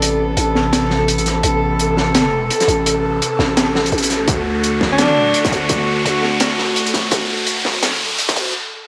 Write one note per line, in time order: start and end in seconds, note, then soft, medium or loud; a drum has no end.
0.00 0.36 A1 medium
0.00 4.24 C3 medium
0.00 4.24 B3 medium
0.00 4.24 A4 medium
0.00 8.54 A4 medium
0.00 closed hi-hat medium
0.00 riser medium
0.37 1.43 A1 loud
0.37 closed hi-hat medium
0.55 snare soft
0.73 snare loud
0.73 closed hi-hat loud
0.90 snare medium
1.08 closed hi-hat medium
1.18 closed hi-hat medium
1.26 snare soft
1.26 closed hi-hat medium
1.43 2.49 A1 medium
1.43 closed hi-hat medium
1.79 closed hi-hat medium
1.97 snare medium
2.15 snare loud
2.15 closed hi-hat medium
2.50 closed hi-hat medium
2.60 snare medium
2.60 closed hi-hat medium
2.68 3.20 A1 medium
2.68 closed hi-hat medium
2.86 closed hi-hat medium
3.22 closed hi-hat medium
3.39 3.91 A1 loud
3.39 snare soft
3.39 snare medium
3.57 snare loud
3.57 closed hi-hat medium
3.75 snare medium
3.86 closed hi-hat soft
3.92 4.27 A1 medium
3.92 closed hi-hat soft
3.98 closed hi-hat soft
4.03 closed hi-hat medium
4.10 snare soft
4.10 closed hi-hat medium
4.28 5.33 D2 loud
4.28 8.50 D3 medium
4.28 8.50 A3 medium
4.28 8.50 F#4 medium
4.28 kick loud
4.28 closed hi-hat medium
4.64 closed hi-hat medium
4.81 kick medium
4.81 snare medium
4.92 5.41 D4 loud
4.98 snare loud
4.98 closed hi-hat medium
5.34 closed hi-hat medium
5.45 kick loud
5.45 snare soft
5.45 closed hi-hat medium
5.52 6.04 D2 loud
5.52 closed hi-hat medium
5.69 kick loud
5.69 closed hi-hat medium
6.05 7.11 D2 loud
6.05 closed hi-hat medium
6.23 snare soft
6.40 snare loud
6.40 closed hi-hat loud
6.58 snare medium
6.76 closed hi-hat medium
6.86 closed hi-hat medium
6.94 kick medium
6.94 snare soft
6.94 closed hi-hat medium
7.11 8.17 D2 medium
7.11 kick loud
7.11 closed hi-hat medium
7.47 closed hi-hat medium
7.65 kick medium
7.65 snare medium
7.83 snare loud
7.83 closed hi-hat medium
8.18 closed hi-hat medium
8.29 kick loud
8.29 snare soft
8.29 closed hi-hat medium
8.36 8.54 D2 loud
8.36 closed hi-hat medium